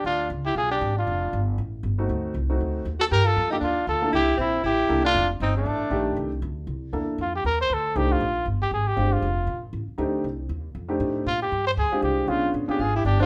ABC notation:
X:1
M:4/4
L:1/8
Q:"Swing" 1/4=236
K:Fmix
V:1 name="Trumpet"
F2 z G ^G =G2 F- | F3 z4 z | z6 z A | B A2 G F2 A2 |
G2 =E2 G3 F- | F z E D4- D- | D z6 z | F G B c A2 G F- |
F2 z G _A G2 F- | F3 z4 z | z8 | F G2 c _A2 G2 |
F2 z G ^G =G G F |]
V:2 name="Alto saxophone"
D2 z =E F D2 D- | D3 z4 z | z6 z ^F | G F2 E D2 F2 |
=E2 C2 E3 D- | D z C A,4- A,- | A, z6 z | z8 |
z8 | z8 | z8 | z8 |
z4 F =E D D |]
V:3 name="Grand piano"
z8 | z6 z [A,CE_G]- | [A,CE_G]2 z [A,CE^F]3 z2 | z3 [B,DFA] z3 [B,D=EA] |
z6 [B,D=EA]2 | z6 [E,A,DG]2- | [E,A,DG] z4 z [B,D=EA]2 | z6 [A,CDEG]2 |
z6 [_A,CDFG]2 | z6 [A,CDEG]2 | z4 z [A,CDEG]3 | z4 z [_A,CDFG]3 |
[=B,_D=DF^G]3 [B,_D=DFG] z3 [E,CD=Gc] |]
V:4 name="Upright bass" clef=bass
D,,2 _D,,2 =B,,,2 ^G,,,2 | F,,,2 G,,,2 A,,,2 G,,,2 | D,,2 C,,2 D,,2 E,,2 | G,,2 F,,2 E,,2 D,,2 |
C,,2 B,,,2 A,,,2 C,,2 | F,,,2 G,,,2 A,,,2 B,,,2 | C,,2 D,,2 C,,2 =E,,2 | F,,2 E,,2 D,,2 C,,2 |
B,,,2 G,,,2 _A,,,2 G,,,2 | F,,,2 B,,,2 A,,, z D,,2 | C,,2 E,,2 F,,2 A,,2 | B,,2 G,,2 D,, z C,,2 |
=B,,,2 _B,,, z ^G,,,2 =G,,,2 |]